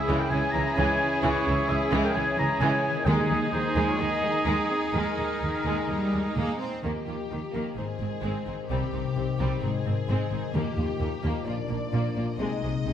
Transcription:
Already playing: C#3 E3 G#3 C#4 E4 G#4 E5
0.07 C#2 C#3 E3 G#3
0.19 A#4 G5
0.30 C#2 C#3 E3 G#3 C#5 G#5
0.52 C#2 C#3 E3 G#3 C#5 A#5
0.74 C#2 C#3 E3 C#5 G#5
0.79 G#3
1.21 C#2 C#3 E3 G#3 E4 C#5
1.45 C#2 C#3 E3 G#3
1.68 C#2 C#3 E3 G#3 G#4 E5
1.91 C#2 C#3 E3 G#3
2.04 A#4 G5
2.14 C#2 C#3 E3 G#3 C#5 G#5
2.36 C#2 C#3 E3 G#3 C#5 A#5
2.60 C#2 C#3 E3 G#3 C#5 G#5
2.89 D#3
2.93 A#3
2.98 D#4
3.03 G#3 D#4 G#4 G#5
3.07 D#2 D#3 G#3 D#4 G#4
3.30 D#2 D#3 G#3
3.52 D#2 D#3 G#3 D#4 C5
3.75 D#2 D#3 G#3
3.87 F4 C#5
3.98 D#2 D#3 G#3 G#4 D#5
4.22 D#2 D#3 G#3
4.45 D#2 D#3 G#3
4.70 C4 G#4
4.92 D#2 D#3 G#3 D#4 A#4
5.18 D#2 D#3 G#3
5.42 D#2 D#3 G#3
5.65 D#2 G#3
5.89 D#2 G3 G#3
6.13 D#2 G#3
6.26 G#3
6.35 D#2 G#3 A#3
6.60 C4
6.83 D#2 D#3 F3 A#3 G4
7.06 D#2 D#3 A#3 D#4 F4
7.29 D#2 D#3 A#3 D#4 F4
7.52 D#2 D#3 A#3 D#4
7.76 G#1 G#2 D#3 C4 D#4 G#4 C5
7.99 G#1 G#2 D#3 C4
8.21 G#1 G#2 G#3 C4 D#4
8.46 G#1 G#2 D#3 C4 D#4
8.69 C2 C3 G3 C4 G4
8.92 C2 C3 C4 D#4
9.16 C2 C3 C4 D#4
9.39 C2 C3 G3 C4
9.62 G#1 G#2 C4 D#4 G#4
9.85 G#1 G#2 D#3 C4
10.08 G#1 G#2 G#3 C4 D#4
10.31 G#1 G#2 D#3 C4 D#4
10.54 D#2 D#3 F3 A#3 G4
10.77 D#2 A#3 D#4 F4
10.99 D#2 A#3 D#4 F4
11.23 D#2 A#3 D#4
11.46 A#1 A#2 A#3 D4 F4 D5
11.69 A#1 A#2 A#3 D4
11.92 A#1 A#2 A#3 D4
12.16 A#1 A#2 A#3 F4
12.38 C2 C3 G#3 C4 D#4 D#5
12.62 C2 C3 G#3 C4 G#4
12.85 C2 C3 G#3 D#4

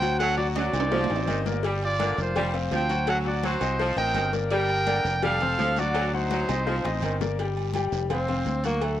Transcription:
Already playing: D2 C5 G5
0.01 F#3 F#4 F#5, high conga, low agogo, short guiro
0.18 F#3 A4 F#5, cowbell, high conga, low agogo, long guiro
0.37 F#3 F#4 D5 F#5
0.55 F#3 F#4 D5, cowbell, high conga, high timbale, low agogo, short guiro
0.73 C2 C4 D#4 C5, low agogo, short guiro
0.80 high timbale
0.92 F3, cowbell, low timbale, long guiro
1.04 low timbale
1.10 A1 C4 D#4 C5, high conga, low agogo
1.16 low timbale
1.27 G1 D#3, cowbell, high conga, low agogo, short guiro
1.46 A#3 A#4 D5, cowbell, high conga, short guiro
1.52 low timbale
1.63 G3 G4 G5, cowbell, high conga, low agogo, long guiro
1.82 F4 D5, high conga, low agogo
2.00 D3 A#3 A#4 D5, cowbell, high conga, low agogo, short guiro
2.18 F1 F4 C5, cowbell, short guiro
2.36 G3 G4 G5, cowbell, high conga, low conga, low agogo, long guiro
2.54 C4 C5 F5, high conga, low agogo
2.71 D2 F3 C5 G5, cowbell, high conga, low timbale, short guiro
2.89 F#3 F#4 F#5, low agogo, short guiro
3.07 F#3 A4 F#5, cowbell, low agogo, long guiro
3.25 F#3 F#4 D5 F#5, high conga
3.43 F#3 F#4 C5, cowbell, high conga, low agogo, short guiro
3.61 C2 C4 C5 D#5, low agogo, short guiro
3.79 F3, cowbell, high conga, long guiro
3.96 A1 C4 A#4 C5 D#5 G5, high conga, low agogo
4.14 G1 D#3, cowbell, high conga, low timbale, low agogo, short guiro
4.33 A#3 A#4 D5, cowbell, high conga, short guiro
4.51 G3 G4 A#4 G5, cowbell, high conga, low agogo, long guiro
4.69 high conga, low agogo
4.87 D3 A#3 A#4 D5, cowbell, high conga, low agogo, short guiro
5.05 F1, cowbell, high conga, short guiro
5.22 G3 G4 A4 F5 G5, cowbell, high conga, low conga, low agogo, long guiro
5.41 C4 C5 F5, high conga, low conga, low agogo
5.58 D2 F3, cowbell, high conga, low timbale, short guiro
5.76 F#3 F#4 D5 F#5, high conga, low agogo, short guiro
5.94 F#3, cowbell, high conga, low agogo, long guiro
6.12 F#3 D#4 F#4 C5 F#5, high conga
6.31 F#3, cowbell, high conga, low agogo, short guiro
6.49 C2 C4 C5 D#5, high bongo, low agogo, short guiro
6.66 F3, cowbell, high bongo, long guiro
6.84 A1 C4 C5 D#5, low bongo, high conga, low agogo
7.02 G1 D#3, cowbell, high conga, low agogo, short guiro
7.21 A#3 A#4 D5, cowbell, low bongo, high conga, short guiro
7.39 G3 G4 G5, cowbell, high conga, low agogo, long guiro
7.56 high conga, low agogo
7.74 G3 G4 G5, cowbell, high conga, low agogo, short guiro
7.92 F1, cowbell, short guiro
8.10 C4 C5 F5, cowbell, high conga, low conga, low agogo, long guiro
8.28 C4 C5 F5, high conga, low conga, low agogo
8.46 D2, cowbell, high conga, short guiro
8.64 F#3 A#3 F#4 F#5, high conga, low agogo, short guiro
8.82 A3, cowbell, low agogo, long guiro

